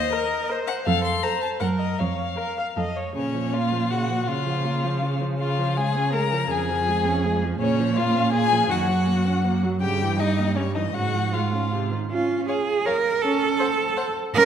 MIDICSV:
0, 0, Header, 1, 5, 480
1, 0, Start_track
1, 0, Key_signature, -5, "minor"
1, 0, Tempo, 367872
1, 1130, Time_signature, 3, 2, 24, 8
1, 1612, Tempo, 379027
1, 6412, Tempo, 368777
1, 9774, Key_signature, -5, "major"
1, 12652, Tempo, 381194
1, 16012, Tempo, 371058
1, 18551, End_track
2, 0, Start_track
2, 0, Title_t, "Violin"
2, 0, Program_c, 0, 40
2, 0, Note_on_c, 0, 75, 101
2, 636, Note_off_c, 0, 75, 0
2, 879, Note_on_c, 0, 78, 89
2, 977, Note_off_c, 0, 78, 0
2, 1125, Note_on_c, 0, 77, 99
2, 1352, Note_off_c, 0, 77, 0
2, 1360, Note_on_c, 0, 84, 86
2, 1603, Note_on_c, 0, 82, 86
2, 1623, Note_off_c, 0, 84, 0
2, 1841, Note_off_c, 0, 82, 0
2, 1849, Note_on_c, 0, 81, 73
2, 1945, Note_off_c, 0, 81, 0
2, 2074, Note_on_c, 0, 78, 80
2, 2175, Note_off_c, 0, 78, 0
2, 2318, Note_on_c, 0, 75, 65
2, 2571, Note_on_c, 0, 77, 69
2, 2590, Note_off_c, 0, 75, 0
2, 3798, Note_off_c, 0, 77, 0
2, 4050, Note_on_c, 0, 73, 60
2, 4532, Note_on_c, 0, 77, 69
2, 4551, Note_off_c, 0, 73, 0
2, 5009, Note_on_c, 0, 78, 71
2, 5028, Note_off_c, 0, 77, 0
2, 5455, Note_off_c, 0, 78, 0
2, 5463, Note_on_c, 0, 77, 65
2, 6630, Note_off_c, 0, 77, 0
2, 6897, Note_on_c, 0, 77, 67
2, 7381, Note_on_c, 0, 80, 76
2, 7401, Note_off_c, 0, 77, 0
2, 7846, Note_off_c, 0, 80, 0
2, 7854, Note_on_c, 0, 82, 85
2, 8342, Note_on_c, 0, 80, 76
2, 8361, Note_off_c, 0, 82, 0
2, 9535, Note_off_c, 0, 80, 0
2, 9774, Note_on_c, 0, 73, 75
2, 10250, Note_on_c, 0, 77, 86
2, 10269, Note_off_c, 0, 73, 0
2, 10717, Note_off_c, 0, 77, 0
2, 10724, Note_on_c, 0, 80, 110
2, 11203, Note_on_c, 0, 78, 85
2, 11223, Note_off_c, 0, 80, 0
2, 12409, Note_off_c, 0, 78, 0
2, 12646, Note_on_c, 0, 79, 82
2, 13128, Note_on_c, 0, 75, 76
2, 13147, Note_off_c, 0, 79, 0
2, 13598, Note_on_c, 0, 73, 65
2, 13617, Note_off_c, 0, 75, 0
2, 13833, Note_off_c, 0, 73, 0
2, 13840, Note_on_c, 0, 75, 64
2, 14070, Note_on_c, 0, 78, 73
2, 14089, Note_off_c, 0, 75, 0
2, 14564, Note_on_c, 0, 77, 56
2, 14582, Note_off_c, 0, 78, 0
2, 15292, Note_off_c, 0, 77, 0
2, 16013, Note_on_c, 0, 77, 51
2, 16117, Note_off_c, 0, 77, 0
2, 16505, Note_on_c, 0, 77, 62
2, 16609, Note_off_c, 0, 77, 0
2, 17459, Note_on_c, 0, 78, 65
2, 17563, Note_off_c, 0, 78, 0
2, 17927, Note_on_c, 0, 78, 76
2, 18030, Note_off_c, 0, 78, 0
2, 18551, End_track
3, 0, Start_track
3, 0, Title_t, "Violin"
3, 0, Program_c, 1, 40
3, 165, Note_on_c, 1, 70, 72
3, 525, Note_off_c, 1, 70, 0
3, 647, Note_on_c, 1, 70, 65
3, 1005, Note_off_c, 1, 70, 0
3, 1610, Note_on_c, 1, 69, 60
3, 1966, Note_off_c, 1, 69, 0
3, 2075, Note_on_c, 1, 70, 47
3, 2445, Note_off_c, 1, 70, 0
3, 3052, Note_on_c, 1, 70, 48
3, 3424, Note_off_c, 1, 70, 0
3, 3555, Note_on_c, 1, 69, 44
3, 3919, Note_off_c, 1, 69, 0
3, 4043, Note_on_c, 1, 61, 49
3, 4526, Note_on_c, 1, 65, 54
3, 4545, Note_off_c, 1, 61, 0
3, 4997, Note_on_c, 1, 66, 49
3, 5016, Note_off_c, 1, 65, 0
3, 5457, Note_on_c, 1, 65, 52
3, 5476, Note_off_c, 1, 66, 0
3, 6651, Note_off_c, 1, 65, 0
3, 6894, Note_on_c, 1, 65, 53
3, 7388, Note_on_c, 1, 68, 61
3, 7407, Note_off_c, 1, 65, 0
3, 7853, Note_on_c, 1, 70, 59
3, 7873, Note_off_c, 1, 68, 0
3, 8335, Note_off_c, 1, 70, 0
3, 8343, Note_on_c, 1, 68, 61
3, 9512, Note_off_c, 1, 68, 0
3, 9763, Note_on_c, 1, 61, 62
3, 10215, Note_off_c, 1, 61, 0
3, 10229, Note_on_c, 1, 65, 69
3, 10697, Note_off_c, 1, 65, 0
3, 10705, Note_on_c, 1, 68, 71
3, 11193, Note_on_c, 1, 66, 58
3, 11213, Note_off_c, 1, 68, 0
3, 12404, Note_off_c, 1, 66, 0
3, 12649, Note_on_c, 1, 67, 66
3, 13089, Note_off_c, 1, 67, 0
3, 13119, Note_on_c, 1, 63, 61
3, 13574, Note_off_c, 1, 63, 0
3, 13581, Note_on_c, 1, 61, 45
3, 13681, Note_off_c, 1, 61, 0
3, 13821, Note_on_c, 1, 63, 51
3, 13921, Note_off_c, 1, 63, 0
3, 14052, Note_on_c, 1, 66, 57
3, 14550, Note_on_c, 1, 65, 46
3, 14569, Note_off_c, 1, 66, 0
3, 15286, Note_off_c, 1, 65, 0
3, 16004, Note_on_c, 1, 73, 50
3, 16108, Note_off_c, 1, 73, 0
3, 16486, Note_on_c, 1, 73, 51
3, 16589, Note_off_c, 1, 73, 0
3, 17440, Note_on_c, 1, 72, 63
3, 17544, Note_off_c, 1, 72, 0
3, 17926, Note_on_c, 1, 72, 55
3, 18029, Note_off_c, 1, 72, 0
3, 18551, End_track
4, 0, Start_track
4, 0, Title_t, "Viola"
4, 0, Program_c, 2, 41
4, 0, Note_on_c, 2, 72, 80
4, 161, Note_off_c, 2, 72, 0
4, 169, Note_on_c, 2, 70, 74
4, 666, Note_on_c, 2, 72, 72
4, 686, Note_off_c, 2, 70, 0
4, 1129, Note_on_c, 2, 69, 71
4, 1149, Note_off_c, 2, 72, 0
4, 1612, Note_on_c, 2, 72, 67
4, 1631, Note_off_c, 2, 69, 0
4, 2091, Note_off_c, 2, 72, 0
4, 2109, Note_on_c, 2, 70, 59
4, 2580, Note_on_c, 2, 73, 54
4, 2599, Note_off_c, 2, 70, 0
4, 3019, Note_off_c, 2, 73, 0
4, 3067, Note_on_c, 2, 70, 62
4, 3295, Note_off_c, 2, 70, 0
4, 3325, Note_on_c, 2, 77, 64
4, 3420, Note_off_c, 2, 77, 0
4, 3564, Note_on_c, 2, 75, 62
4, 3800, Note_on_c, 2, 73, 54
4, 3819, Note_off_c, 2, 75, 0
4, 4043, Note_off_c, 2, 73, 0
4, 4050, Note_on_c, 2, 49, 39
4, 4285, Note_on_c, 2, 53, 40
4, 4304, Note_off_c, 2, 49, 0
4, 4523, Note_on_c, 2, 58, 46
4, 4542, Note_off_c, 2, 53, 0
4, 4762, Note_on_c, 2, 53, 40
4, 4781, Note_off_c, 2, 58, 0
4, 5008, Note_on_c, 2, 49, 43
4, 5027, Note_off_c, 2, 53, 0
4, 5234, Note_on_c, 2, 53, 41
4, 5253, Note_off_c, 2, 49, 0
4, 5459, Note_off_c, 2, 53, 0
4, 5467, Note_on_c, 2, 49, 42
4, 5694, Note_on_c, 2, 53, 41
4, 5713, Note_off_c, 2, 49, 0
4, 5931, Note_on_c, 2, 58, 44
4, 5950, Note_off_c, 2, 53, 0
4, 6174, Note_on_c, 2, 53, 44
4, 6193, Note_off_c, 2, 58, 0
4, 6411, Note_on_c, 2, 49, 46
4, 6430, Note_off_c, 2, 53, 0
4, 6656, Note_on_c, 2, 53, 45
4, 6675, Note_off_c, 2, 49, 0
4, 6887, Note_off_c, 2, 53, 0
4, 6895, Note_on_c, 2, 49, 47
4, 7144, Note_on_c, 2, 53, 45
4, 7163, Note_off_c, 2, 49, 0
4, 7390, Note_on_c, 2, 56, 49
4, 7409, Note_off_c, 2, 53, 0
4, 7635, Note_on_c, 2, 61, 51
4, 7655, Note_off_c, 2, 56, 0
4, 7863, Note_on_c, 2, 56, 49
4, 7883, Note_off_c, 2, 61, 0
4, 8105, Note_on_c, 2, 53, 50
4, 8124, Note_off_c, 2, 56, 0
4, 8338, Note_off_c, 2, 53, 0
4, 8346, Note_on_c, 2, 49, 55
4, 8589, Note_on_c, 2, 53, 53
4, 8608, Note_off_c, 2, 49, 0
4, 8832, Note_on_c, 2, 56, 52
4, 8852, Note_off_c, 2, 53, 0
4, 9069, Note_on_c, 2, 61, 57
4, 9089, Note_off_c, 2, 56, 0
4, 9321, Note_on_c, 2, 56, 53
4, 9340, Note_off_c, 2, 61, 0
4, 9556, Note_on_c, 2, 53, 55
4, 9575, Note_off_c, 2, 56, 0
4, 9777, Note_off_c, 2, 53, 0
4, 9784, Note_on_c, 2, 49, 55
4, 10013, Note_on_c, 2, 53, 61
4, 10033, Note_off_c, 2, 49, 0
4, 10257, Note_on_c, 2, 58, 57
4, 10277, Note_off_c, 2, 53, 0
4, 10499, Note_on_c, 2, 61, 57
4, 10519, Note_off_c, 2, 58, 0
4, 10725, Note_on_c, 2, 58, 57
4, 10744, Note_off_c, 2, 61, 0
4, 10969, Note_on_c, 2, 53, 58
4, 10988, Note_off_c, 2, 58, 0
4, 11185, Note_off_c, 2, 53, 0
4, 11193, Note_on_c, 2, 51, 53
4, 11440, Note_on_c, 2, 54, 55
4, 11459, Note_off_c, 2, 51, 0
4, 11676, Note_on_c, 2, 58, 54
4, 11695, Note_off_c, 2, 54, 0
4, 11926, Note_on_c, 2, 61, 55
4, 11945, Note_off_c, 2, 58, 0
4, 12174, Note_on_c, 2, 58, 57
4, 12193, Note_off_c, 2, 61, 0
4, 12418, Note_on_c, 2, 54, 51
4, 12437, Note_off_c, 2, 58, 0
4, 12644, Note_off_c, 2, 54, 0
4, 12652, Note_on_c, 2, 49, 54
4, 12904, Note_on_c, 2, 52, 51
4, 12923, Note_off_c, 2, 49, 0
4, 13149, Note_on_c, 2, 55, 51
4, 13168, Note_off_c, 2, 52, 0
4, 13368, Note_on_c, 2, 58, 48
4, 13387, Note_off_c, 2, 55, 0
4, 13603, Note_on_c, 2, 55, 50
4, 13622, Note_off_c, 2, 58, 0
4, 13839, Note_on_c, 2, 52, 44
4, 13858, Note_off_c, 2, 55, 0
4, 14076, Note_off_c, 2, 52, 0
4, 14083, Note_on_c, 2, 49, 44
4, 14325, Note_on_c, 2, 53, 43
4, 14344, Note_off_c, 2, 49, 0
4, 14562, Note_on_c, 2, 56, 43
4, 14581, Note_off_c, 2, 53, 0
4, 14810, Note_on_c, 2, 61, 43
4, 14829, Note_off_c, 2, 56, 0
4, 15050, Note_off_c, 2, 61, 0
4, 15062, Note_on_c, 2, 48, 45
4, 15298, Note_on_c, 2, 51, 44
4, 15317, Note_off_c, 2, 48, 0
4, 15539, Note_off_c, 2, 51, 0
4, 15547, Note_on_c, 2, 61, 61
4, 15938, Note_off_c, 2, 61, 0
4, 16975, Note_on_c, 2, 61, 75
4, 17377, Note_off_c, 2, 61, 0
4, 18411, Note_on_c, 2, 61, 74
4, 18551, Note_off_c, 2, 61, 0
4, 18551, End_track
5, 0, Start_track
5, 0, Title_t, "Cello"
5, 0, Program_c, 3, 42
5, 1131, Note_on_c, 3, 41, 83
5, 1511, Note_off_c, 3, 41, 0
5, 2086, Note_on_c, 3, 42, 66
5, 2474, Note_off_c, 3, 42, 0
5, 2582, Note_on_c, 3, 41, 56
5, 2967, Note_off_c, 3, 41, 0
5, 3553, Note_on_c, 3, 41, 59
5, 3941, Note_off_c, 3, 41, 0
5, 4037, Note_on_c, 3, 46, 44
5, 5471, Note_on_c, 3, 49, 49
5, 5490, Note_off_c, 3, 46, 0
5, 8339, Note_off_c, 3, 49, 0
5, 8347, Note_on_c, 3, 41, 61
5, 9748, Note_off_c, 3, 41, 0
5, 9762, Note_on_c, 3, 46, 59
5, 11174, Note_off_c, 3, 46, 0
5, 11211, Note_on_c, 3, 42, 59
5, 12644, Note_on_c, 3, 43, 59
5, 12663, Note_off_c, 3, 42, 0
5, 14065, Note_off_c, 3, 43, 0
5, 14072, Note_on_c, 3, 44, 53
5, 15264, Note_off_c, 3, 44, 0
5, 15534, Note_on_c, 3, 65, 74
5, 15977, Note_off_c, 3, 65, 0
5, 16012, Note_on_c, 3, 68, 78
5, 16490, Note_on_c, 3, 70, 89
5, 16509, Note_off_c, 3, 68, 0
5, 16965, Note_on_c, 3, 69, 88
5, 16985, Note_off_c, 3, 70, 0
5, 18170, Note_off_c, 3, 69, 0
5, 18409, Note_on_c, 3, 70, 117
5, 18551, Note_off_c, 3, 70, 0
5, 18551, End_track
0, 0, End_of_file